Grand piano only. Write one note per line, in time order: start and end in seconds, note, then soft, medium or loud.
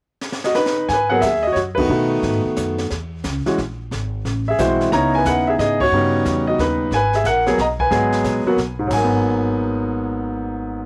0.45 0.56 F#4 medium
0.45 0.55 D#5 medium
0.55 0.88 D#4 medium
0.55 0.90 B4 medium
0.89 1.11 G#5 medium
0.93 1.12 B4 medium
1.10 1.21 F#3 medium
1.10 1.21 A#3 medium
1.10 1.22 B3 medium
1.10 1.22 G#4 medium
1.10 1.22 F#5 medium
1.15 1.24 A#4 medium
1.21 1.44 E5 medium
1.25 1.44 G#4 medium
1.43 1.55 D#5 medium
1.47 1.55 F#4 medium
1.52 1.58 C#5 medium
1.57 1.62 F#4 medium
1.75 1.88 D#3 medium
1.75 1.89 A3 medium
1.75 1.89 B3 medium
1.75 1.89 F#4 medium
1.75 2.40 B4 medium
1.79 2.42 D#4 medium
1.89 2.83 D#3 medium
1.89 2.84 A3 medium
1.89 2.84 B3 medium
1.89 2.84 F#4 medium
3.46 3.57 E3 medium
3.46 3.57 G#3 medium
3.46 3.57 C#4 medium
3.46 3.57 F#4 medium
4.48 4.59 G#4 medium
4.48 4.58 E5 medium
4.59 4.92 E3 medium
4.59 4.92 G#3 medium
4.59 4.92 C4 soft
4.59 4.91 E4 medium
4.59 4.92 F#4 medium
4.59 4.90 C5 medium
4.92 5.84 C#3 medium
4.92 5.85 B3 medium
4.92 5.85 D#4 medium
4.92 5.85 E4 medium
4.92 5.13 C#5 medium
4.92 5.14 A#5 medium
5.15 5.26 B4 medium
5.15 5.26 G#5 medium
5.26 5.47 B4 medium
5.26 5.46 F#5 medium
5.47 5.54 G#4 medium
5.47 5.52 E5 medium
5.59 5.80 G#4 medium
5.59 5.79 D#5 medium
5.81 6.44 F#4 medium
5.81 6.43 C#5 loud
5.93 6.85 C#3 medium
5.93 6.85 G3 medium
5.93 6.85 B3 soft
5.93 6.60 D#4 medium
6.47 6.59 F#4 medium
6.47 6.58 D#5 medium
6.60 6.91 D#4 medium
6.60 6.90 B4 medium
6.94 7.13 B4 medium
6.94 7.15 G#5 loud
7.15 7.25 G#4 medium
7.15 7.25 E5 medium
7.26 7.57 A#4 medium
7.26 7.60 F#5 medium
7.47 7.57 F#3 medium
7.47 7.57 A#3 medium
7.47 7.57 B3 medium
7.47 7.57 G#4 medium
7.60 7.66 D#5 medium
7.60 7.65 A#5 medium
7.80 8.76 B4 medium
7.80 8.75 G#5 medium
7.91 8.41 F#3 medium
7.91 8.41 G#3 medium
7.91 8.42 B3 medium
7.91 8.42 G#4 medium
8.46 8.56 F#3 medium
8.46 8.57 A#3 medium
8.46 8.57 B3 medium
8.46 8.57 F#4 medium
8.79 10.86 G#2 medium
8.87 10.86 F#3 medium
8.93 10.86 A#3 medium
8.93 10.86 G#5 medium
9.04 10.86 B3 medium